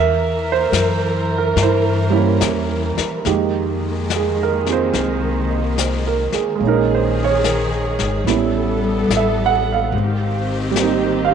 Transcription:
Already playing: E2 E3 A#4 E5
0.52 C5
0.72 F#2, snare, hi-hat pedal
1.38 A#4
1.56 G2, brush sweep, snare
1.63 E4 C5
2.10 G3 A#3 C#4 E4
2.41 E2, snare, hi-hat pedal
2.98 muted upright bass stroke, snare
3.25 F2 D#3 G#3 A#3 D#4 G4, brush sweep, snare
3.29 A#3
4.10 snare, hi-hat pedal
4.16 G#4
4.43 A#4
4.66 C4 F4 G#4, snare
4.72 C5
4.93 C2, brush sweep, snare
5.50 D#5
5.78 C5, snare, hi-hat pedal
6.07 A#4
6.32 G#4, muted upright bass stroke, snare
6.55 G#3 A#3
6.60 A#1 D#3 C#4 G#4, brush sweep
6.67 D#4 A#4
6.95 C5
7.24 C#5
7.44 snare, hi-hat pedal
7.99 G#1, snare
8.24 A1 G3 B3 C#4 A4, brush sweep, snare
8.29 B3 E4
9.08 A1, snare, hi-hat pedal
9.17 E5
9.46 F#5
9.73 F5
9.92 G#1 D#3 C4 G4, brush sweep
10.71 G3
10.75 A#3 C4, snare, hi-hat pedal
10.83 D#4
11.25 F5

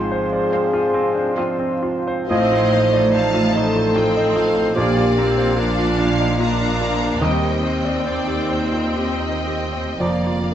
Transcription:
Already playing: G#1 G#2 F3 C4 F4 G#4 C5 F5
0.12 C5
0.32 D5
0.53 C4 C5 F5
0.73 F4
0.94 C4
1.15 D4
1.37 F3 C4 F4 C5 F5
1.59 C4
1.83 F4
2.07 C5
2.29 A1 A2 F3 C4 D#4 C5 D#5 F5
2.52 F4
2.73 A3 C5
2.93 D5
3.13 A3 C5 F5 A5
3.34 F4
3.55 D#4 A4 C5
3.76 F4
3.95 C4 F4 G5
4.17 D#4
4.36 F4 F5
4.56 C5
4.74 A#1 A#2 F3 A#3 D4 G4 D5 F5
4.97 F4
5.17 C4 A#4
5.38 C5
5.56 F3 D4 F4 A#4 D5
5.79 F4
5.99 D4 F5
6.20 D#4
6.39 F3 A#3 D4 F4 F5 A#5
6.61 D4
6.81 F4
7.01 A#4
7.20 D#2 D#3 G3 C4 D#5 G5
7.42 G4
7.63 C4 C5
7.85 D5
8.05 D#3 C4 D#4 C5 D5
8.27 G4
8.50 D#4 C5
8.72 F4
8.95 D#3 C4 G4 D#5
9.20 D#4
9.47 G4
9.73 C5
9.99 F1 F2 D3 F3 A#3 F4 D5 F5 A#5
10.27 F4

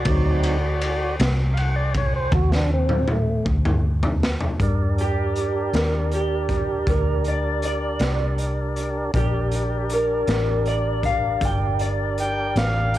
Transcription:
Already playing: F#4 D5
0.05 D2 F#3 C4, kick, ride
0.09 D#4
0.43 ride
0.81 ride
1.20 C2, snare, ride
1.53 F5, ride
1.58 F#5
1.76 D5
1.94 C#5, kick, ride
2.16 C5
2.32 D#2 F#4, kick, high tom
2.52 D4, snare
2.73 C4
2.89 mid tom
3.08 mid tom
3.12 A3
3.46 D2, kick
3.65 mid tom
4.03 floor tom
4.23 snare
4.41 floor tom
4.60 G2 D4 G4 A#4 D5, kick, closed hi-hat
4.98 G4, closed hi-hat
5.36 closed hi-hat
5.73 D#2 A#4, snare, closed hi-hat
6.12 G4, closed hi-hat
6.49 kick, closed hi-hat
6.87 D2 A#4, kick, closed hi-hat
7.24 D5, closed hi-hat
7.62 D5, closed hi-hat
7.99 C2, snare, closed hi-hat
8.38 closed hi-hat
8.76 closed hi-hat
9.14 A#1 D4 G4 A#4 D5, kick, closed hi-hat
9.52 closed hi-hat
9.90 closed hi-hat
9.94 A#4
10.27 A1, snare, closed hi-hat
10.65 D5, closed hi-hat
11.03 F5, kick, closed hi-hat
11.41 G1, kick, closed hi-hat
11.45 G5
11.79 D5, closed hi-hat
12.18 G5, closed hi-hat
12.56 A1 F5, snare, closed hi-hat
12.94 closed hi-hat

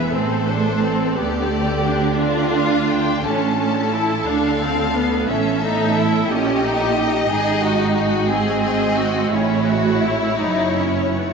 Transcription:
Already playing: E1 E2 B3 B4 E5
0.12 A1 A2 C4 A4 C5
0.48 D4
0.82 C4
1.17 D2 D3 B3 G4 D5
1.51 A3
1.85 D4
2.21 F4 D5
2.57 F5
2.89 G5
3.24 A1 A2 C#4 A4 A5
3.59 C#4
3.93 E4
4.26 D2 D3 D4 F5
4.62 C4
4.96 B3
5.27 A1 A2 C#4 A4 E5
5.63 D#4
5.98 E4
6.28 A#1 A#2 C#4 G4 D#5
6.63 D#4
6.96 D#4
7.29 G#1 G#2 G#4
7.63 F#4
7.95 F#4
8.29 C4 G#4 D#5
8.63 G#4
8.97 F#4
9.33 A1 A2 C#4 E4 C#5
9.68 F#4
10.03 E4
10.39 F#1 F#2 D#4
10.77 C#4
11.16 B3

